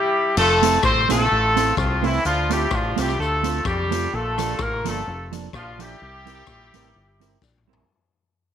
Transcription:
Already playing: horn section G3 E4 G4
0.37 fingered electric bass F1, horn section A3 F4 A4, crash
0.62 clean electric guitar A3 C4 E4 A4, closed hi-hat
0.83 fingered electric bass A1, horn section C4 A4 C5, kick, cross-stick
1.09 fingered electric bass A#1, clean electric guitar A3 C4 E4 A4, horn section A3 F4 A4, closed hi-hat
1.31 fingered electric bass A1
1.56 clean electric guitar A3 C4 E4 A4, closed hi-hat
1.77 fingered electric bass C2, horn section F3 C4 F4, kick, cross-stick
2.03 horn section E3 C4 E4, clean electric guitar A3 C4 E4 A4, open hi-hat
2.25 fingered electric bass D2, horn section F3 D4 F4, hi-hat pedal
2.50 horn section G3 E4 G4, clean electric guitar A3 C4 F4 A4, closed hi-hat
2.71 fingered electric bass A1, horn section F3 D4 F4, kick, cross-stick
2.96 fingered electric bass C2, horn section G3 E4 G4, clean electric guitar A3 C4 F4 A4, closed hi-hat
3.09 cross-stick
3.19 fingered electric bass D2, horn section A3 F4 A4
3.43 clean electric guitar A3 C4 F4 A4, closed hi-hat
3.65 fingered electric bass F2, horn section G3 D4 G4, kick, cross-stick
3.91 clean electric guitar A3 C4 F4 A4, closed hi-hat
4.13 fingered electric bass A#1, horn section A3 F4 A4
4.38 clean electric guitar F3 A#3 D4 A4, cross-stick, closed hi-hat
4.59 fingered electric bass A1, horn section A#3 F4 A#4, kick, cross-stick
4.84 fingered electric bass G1, clean electric guitar F3 A#3 D4 A4, horn section A3 F4 A4, closed hi-hat
5.07 fingered electric bass F1
5.32 clean electric guitar F3 A#3 D4 A4, closed hi-hat
5.53 fingered electric bass A#1, horn section F3 D4 F4, kick, cross-stick
5.79 clean electric guitar F3 A#3 D4 A4, horn section G3 E4 G4, closed hi-hat
6.02 fingered electric bass C2
6.26 clean electric guitar G3 C4 E4 A#4, closed hi-hat
6.47 fingered electric bass A#1, kick, cross-stick
6.74 fingered electric bass A1, clean electric guitar G3 C4 E4 A#4, closed hi-hat
6.96 fingered electric bass G1
7.20 clean electric guitar G3 C4 E4 A#4, closed hi-hat
7.42 fingered electric bass A#1, kick, snare
7.58 mid tom
7.67 clean electric guitar G3 C4 E4 A#4
7.73 floor tom

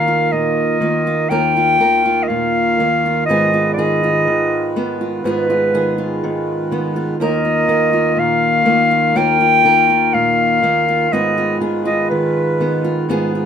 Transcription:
Already playing: steel-string acoustic guitar D#2 D#3 A#3 A#4, harmonium D#3 A#3 F4 A#4, clarinet F5
0.08 steel-string acoustic guitar F4
0.32 steel-string acoustic guitar A#2, clarinet D#5
0.80 steel-string acoustic guitar D#3 A#3
1.07 steel-string acoustic guitar F4
1.29 steel-string acoustic guitar D#2 A#3 F4 A#4, clarinet G5
1.57 steel-string acoustic guitar F4
1.80 steel-string acoustic guitar D#3 A#4
2.06 steel-string acoustic guitar F4
2.23 clarinet D#5
2.28 steel-string acoustic guitar A#2, clarinet F5
2.79 steel-string acoustic guitar D#3 A#3
3.06 steel-string acoustic guitar F4
3.26 steel-string acoustic guitar G#2 B3, harmonium B4, clarinet D#5
3.30 harmonium G#3, steel-string acoustic guitar F4 G#4
3.54 steel-string acoustic guitar F4
3.74 clarinet D#5
3.78 steel-string acoustic guitar D#3 G#4
4.03 steel-string acoustic guitar F4
4.27 steel-string acoustic guitar D#3
4.76 steel-string acoustic guitar D#3 B3
5.01 steel-string acoustic guitar F4
5.22 steel-string acoustic guitar G#2 B3 F4, clarinet B4
5.27 steel-string acoustic guitar G#4
5.50 steel-string acoustic guitar F4
5.74 steel-string acoustic guitar D#3 G#4
5.98 steel-string acoustic guitar F4
6.24 steel-string acoustic guitar D#3
6.71 steel-string acoustic guitar D#3 B3
6.96 steel-string acoustic guitar F4
7.18 steel-string acoustic guitar D#2 A#3 F4 A#4, harmonium D#3 A#3 A#4
7.23 clarinet D#5
7.45 steel-string acoustic guitar F4
7.68 steel-string acoustic guitar D#3 A#4
7.93 steel-string acoustic guitar F4
8.16 steel-string acoustic guitar A#2, clarinet F5
8.65 steel-string acoustic guitar D#3 A#3
9.15 steel-string acoustic guitar D#2 A#3 F4 A#4, clarinet G5
9.41 steel-string acoustic guitar F4
9.65 steel-string acoustic guitar D#3 A#4
9.89 steel-string acoustic guitar F4
10.14 steel-string acoustic guitar A#2, clarinet F5
10.63 steel-string acoustic guitar D#3 A#3
10.88 steel-string acoustic guitar F4
11.12 steel-string acoustic guitar G#2 B3 F4 G#4, harmonium G#3 B4, clarinet D#5
11.38 steel-string acoustic guitar F4
11.61 steel-string acoustic guitar D#3 G#4
11.85 steel-string acoustic guitar F4, clarinet D#5
12.10 steel-string acoustic guitar D#3, clarinet B4
12.60 steel-string acoustic guitar D#3 B3
12.84 steel-string acoustic guitar F4
13.07 steel-string acoustic guitar G#2 B3 F4 G#4, harmonium D#4
13.35 steel-string acoustic guitar F4

